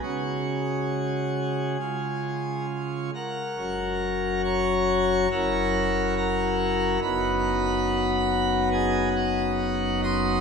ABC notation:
X:1
M:4/4
L:1/8
Q:1/4=69
K:F#
V:1 name="Pipe organ"
G6 z [Afa]- | [Afa]2 [cac']2 [Afa]2 [Afa]2 | [Bfb]4 [Gdg] [Fdf]2 [d^bd'] |]
V:2 name="Pipe organ" clef=bass
[C,G,CF]4 [C,G,CE]3 z | [F,,,F,,F,CF]4 [F,,,F,,F,C=E]4 | [F,,,F,,F,B,D]8 |]